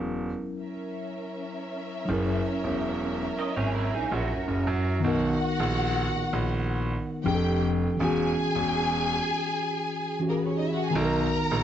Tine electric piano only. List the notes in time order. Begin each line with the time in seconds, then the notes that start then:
Already playing: F#3 C#4 E4 A#4
2.05 F#3 C#4
2.10 E4 A#4
5.00 D#3 B3
5.05 D#4 A#4
7.24 F3 D4 G4
7.28 G#4
7.35 A4
7.97 E3 C#4
8.02 F#4 G#4
10.20 E3 C#4 F#4 G4
10.30 G#4
10.90 D#3 B3
10.96 D#4 A4
11.05 A#4